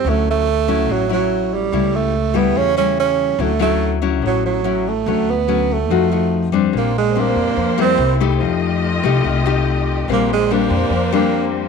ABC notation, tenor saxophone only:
X:1
M:4/4
L:1/8
Q:1/4=144
K:D
V:1 name="Tenor saxophone"
A, A,3 F, F,2 G,- | G, A,2 B, C C C2 | A, A,2 z F, F,2 A,- | A, B,2 A,4 z |
[K:Bb] B, _A, B,3 C2 z | z8 | B, _A, B,3 B,2 z |]